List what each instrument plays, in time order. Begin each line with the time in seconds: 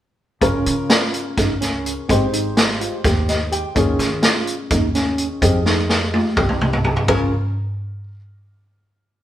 0.41 upright bass C#2, grand piano C#3 C#4 F4 A#4, tine electric piano C#4, kick, closed hi-hat
0.66 upright bass C#3, closed hi-hat
0.90 tine electric piano F4, snare, closed hi-hat
1.14 closed hi-hat
1.37 upright bass C#2, tine electric piano D#4, kick, snare, closed hi-hat
1.61 tine electric piano C#4, snare, closed hi-hat
1.86 closed hi-hat
2.09 upright bass G#1, grand piano G#3 D#4 G4 C5, tine electric piano C4, kick, closed hi-hat
2.33 tine electric piano D#4, closed hi-hat
2.57 snare, closed hi-hat
2.81 tine electric piano F4, closed hi-hat
3.04 upright bass D#2, tine electric piano G4, kick, snare, closed hi-hat
3.28 grand piano D#5, snare, closed hi-hat
3.52 tine electric piano G4, grand piano G5, closed hi-hat
3.75 upright bass D#2, grand piano D#3 C#4 F4 G#4, tine electric piano C#4, kick, closed hi-hat
3.99 upright bass D#3, snare, closed hi-hat
4.23 tine electric piano F4, snare, closed hi-hat
4.47 closed hi-hat
4.70 upright bass D#2, tine electric piano D#4, kick, closed hi-hat
4.95 tine electric piano C#4, snare, closed hi-hat
5.18 closed hi-hat
5.41 upright bass F2, grand piano F3 D#4 G4 G#4, tine electric piano C4, kick, closed hi-hat
5.66 tine electric piano D#4, snare
5.89 snare
6.13 tine electric piano F4, high tom
6.37 upright bass C2, tine electric piano G4, kick, mid tom
6.49 mid tom
6.61 mid tom
6.73 floor tom
6.84 tine electric piano G4, floor tom
6.96 floor tom
7.08 upright bass C#2, grand piano C#3 C#4 F4 A#4, tine electric piano C#4, kick, floor tom, ride bell